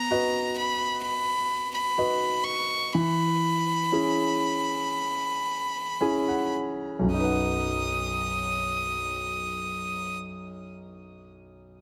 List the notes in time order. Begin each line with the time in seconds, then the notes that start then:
Already playing: B3 A#5
0.11 F#4 B4 D#5
0.57 B5
1.03 B5
1.74 B5
1.98 F#4 B4 D#5
2.45 C#6
2.93 E3 B5
3.92 C#4 E4 G#4
6.01 C#4 E4 G#4 G#5
6.28 F#5
6.99 B1
7.04 F#2
7.09 F#3 D#6
7.14 D#4
7.19 B4
7.24 F#5